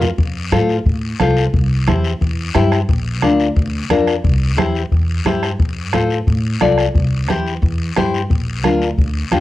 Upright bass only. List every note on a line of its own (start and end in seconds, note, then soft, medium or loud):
0.00 0.11 F2 medium
0.18 0.53 F2 medium
0.52 0.79 A2 medium
0.86 1.13 A2 medium
1.20 1.47 C2 medium
1.53 1.89 C2 medium
1.87 2.14 E2 medium
2.21 2.48 E2 medium
2.55 2.82 G2 medium
2.89 3.23 A#1 medium
3.23 3.50 D2 medium
3.56 3.83 D2 medium
3.90 4.17 F2 medium
4.24 4.58 C2 medium
4.58 4.85 E2 medium
4.92 5.19 E2 medium
5.25 5.52 G2 medium
5.59 5.93 F2 medium
5.93 6.21 A2 medium
6.27 6.54 A2 medium
6.61 6.88 C2 medium
6.94 7.28 C2 medium
7.28 7.56 E2 loud
7.62 7.90 E2 medium
7.97 8.24 G2 medium
8.30 8.64 A#1 medium
8.64 8.91 D2 medium
8.98 9.25 D2 medium
9.31 9.40 F2 medium